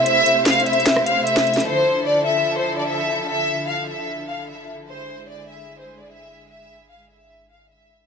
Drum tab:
HH |x-----x-----x-x-x-x-x-x-x-----x-----x-----x-x-x-|------------------------------------------------|------------------------------------------------|------------------------------------------------|
SD |------------o-----------o--r-----------o-----o--|------------------------------------------------|------------------------------------------------|------------------------------------------------|

HH |------------------------------------------------|
SD |------------------------------------------------|